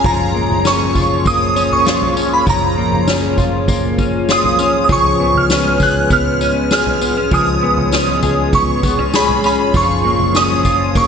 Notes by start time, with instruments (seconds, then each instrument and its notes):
Already playing: clean electric guitar C#4, ambient pad G#4 C#5
0.04 picked electric bass F#1, ambient pad F3 F4, clean electric guitar F3 F4, synth bell A#5, kick, floor tom, tambourine
0.35 clean electric guitar A#3
0.50 picked electric bass F#1, floor tom
0.65 clean electric guitar C#4, synth bell C#6, snare, tambourine
0.95 picked electric bass F#1, clean electric guitar F4, kick, floor tom, tambourine
1.25 picked electric bass F#1, clean electric guitar A#3, synth bell D#6, kick, floor tom, tambourine
1.56 clean electric guitar C#4, tambourine
1.71 synth bell C#6, floor tom
1.86 clean electric guitar F4, snare, tambourine
2.02 floor tom
2.17 clean electric guitar C#4, tambourine
2.34 synth bell B5
2.46 picked electric bass F#1, clean electric guitar F3 F4, synth bell A#5, kick, floor tom, tambourine
2.77 clean electric guitar A#3
2.92 picked electric bass F#1, floor tom
3.08 clean electric guitar C#4, snare, tambourine
3.38 picked electric bass F#1, clean electric guitar F4, kick, floor tom, tambourine
3.68 picked electric bass F#1, clean electric guitar A#3, kick, floor tom, tambourine
3.98 clean electric guitar C#4, kick, tambourine
4.29 clean electric guitar F4, synth bell D#6, snare, tambourine
4.44 floor tom
4.59 clean electric guitar C#4, tambourine
4.84 synth bell D#6
4.89 picked electric bass C#2, clean electric guitar F3 G#4, ambient pad G#3 B4, synth bell C#6, kick, floor tom, tambourine
5.20 clean electric guitar B3
5.35 picked electric bass C#2, synth bell F6, floor tom
5.50 clean electric guitar C#4, snare, tambourine
5.80 picked electric bass C#2, clean electric guitar G#4, synth bell F#6, kick, floor tom, tambourine
6.10 picked electric bass C#2, clean electric guitar B3, synth bell F6, kick, floor tom, tambourine
6.41 clean electric guitar C#4, tambourine
6.71 clean electric guitar G#4, synth bell F6, snare, tambourine
6.86 floor tom
7.01 clean electric guitar B3, tambourine
7.17 clean electric guitar C#4
7.31 picked electric bass C#2, clean electric guitar F3 G#4, ambient pad G#4, synth bell D#6, kick, floor tom, tambourine
7.63 clean electric guitar B3
7.77 picked electric bass C#2, floor tom
7.92 clean electric guitar C#4, snare, tambourine
8.23 picked electric bass C#2, clean electric guitar G#4, floor tom, tambourine
8.53 picked electric bass C#2, clean electric guitar B3, synth bell C#6, kick, floor tom, tambourine
8.83 clean electric guitar B3, kick, tambourine
8.98 clean electric guitar C#4, floor tom
9.14 clean electric guitar G#4, synth bell B5, snare, tambourine
9.29 floor tom
9.44 clean electric guitar C#4, synth bell B5, tambourine
9.74 picked electric bass F#1, ambient pad F3 C#5, clean electric guitar F3 F4, synth bell C#6, kick, floor tom, tambourine
10.05 clean electric guitar A#3
10.20 picked electric bass F#1, floor tom
10.35 clean electric guitar C#4, synth bell D#6, snare, tambourine
10.65 picked electric bass F#1, clean electric guitar F4, kick, floor tom, tambourine
10.95 picked electric bass F#1, clean electric guitar A#3, synth bell C#6, kick, floor tom, tambourine